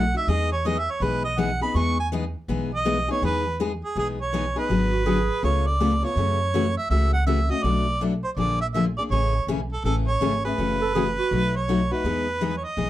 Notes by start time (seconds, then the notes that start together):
Already playing: B1 F#5
0.14 A3 D#4 F#4 E5
0.28 E2 E3 G#3 B3 D#4 G#4 D#5
0.52 C#5
0.65 E3 G#3 B3 D#4 G#4 D#5
0.79 E5
0.91 C#5
1.00 B1 E3 G#3 B3 D#4 G#4 B4
1.25 D#5
1.38 E3 G#3 B3 D#4 G#4 F#5
1.61 B3 D#4 G#4 B5
1.74 E2 E3 G#3 B3 D#4 G#4 C#6
2.00 G#5
2.12 E3 G#3 B3 D#4 G#4
2.48 B1 E3 G#3 B3 D#4 G#4
2.74 D#5
2.85 E3 G#3 B3 D#4 G#4
3.08 B3 D#4 G#4 C#5
3.22 E2 E3 G#3 B3 D#4 G#4 B4
3.60 E3 G#3 B3 D#4 G#4
3.84 G#4
3.96 B1 E3 G#3 B3 D#4 G#4
4.22 C#5
4.33 E3 G#3 B3 D#4 G#4
4.56 B3 D#4 G#4 B4
4.69 G#1 D3 F#3 B3 F#4 G#4
4.92 F#4
5.06 D3 F#3 B3 F#4 G#4
5.43 C#2 C#3 A3 B3 F4 A4 C#5
5.67 D5
5.80 C#3 A3 B3 F4 A4
6.03 B3 F4 A4 C#5
6.16 F#2 C#3 E3 A3 C#4 F#4
6.54 C#3 E3 A3 C#4 F#4
6.77 E5
6.90 C#2 C#3 E3 A3 C#4 F#4 E5
7.13 F#5
7.27 C#3 E3 A3 C#4 F#4 E5
7.50 A3 C#4 F#4 D#5
7.63 B1 B2 F#3 A3 D4 F#4 D5
8.01 B2 F#3 A3 D4 F#4
8.24 C5
8.37 A#1 D3 F3 A#3 D4 G#4 D5
8.61 E5
8.74 D3 F3 A#3 D4 G#4 E5
8.97 A#3 D4 G#4 D5
9.10 A1 C#3 E3 A3 C#4 G#4 C#5
9.47 B1 C#3 E3 A3 C#4 G#4
9.72 A4
9.84 A1 C#3 E3 A3 C#4 G#4 A4
10.08 C#5
10.20 G#1 C#3 E3 A3 C#4 G#4
10.45 A3 C#4 G#4 B4
10.58 F#1 C#3 E3 A3 C#4 F#4
10.81 A4
10.94 C#3 E3 A3 C#4 F#4 G#4
11.18 F#4
11.31 B1 B2 F#3 A3 D#4 F#4
11.56 C#5
11.68 B2 F#3 A3 D#4 F#4
11.91 A3 D#4 F#4 B4
12.04 E2 E3 G#3 B3 D#4 G#4
12.41 E3 G#3 B3 D#4 G#4
12.57 C#5
12.64 D#5
12.77 B1 E3 G#3 B3 D#4 G#4